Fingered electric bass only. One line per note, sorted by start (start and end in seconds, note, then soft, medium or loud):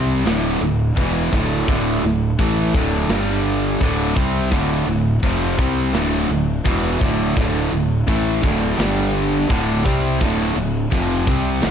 0.00 0.23 C2 loud
0.25 0.58 D1 medium
0.61 0.94 D1 medium
0.97 1.30 E1 loud
1.33 1.66 D1 loud
1.68 2.01 D1 loud
2.03 2.36 D1 medium
2.39 2.72 A1 medium
2.74 3.07 D1 loud
3.09 3.77 G1 medium
3.81 4.14 D1 medium
4.16 4.50 C2 medium
4.52 4.85 D1 loud
4.87 5.20 D1 medium
5.23 5.56 F1 medium
5.59 5.92 C2 loud
5.94 6.27 D1 medium
6.29 6.63 D1 medium
6.66 6.99 E1 medium
7.01 7.34 D1 medium
7.37 7.70 D1 loud
7.72 8.05 D1 medium
8.08 8.41 A1 loud
8.43 8.76 D1 loud
8.79 9.46 G1 medium
9.50 9.83 D1 medium
9.86 10.18 C2 medium
10.21 10.54 D1 loud
10.56 10.89 D1 medium
10.92 11.25 F1 loud
11.27 11.60 C2 loud
11.63 11.71 D1 medium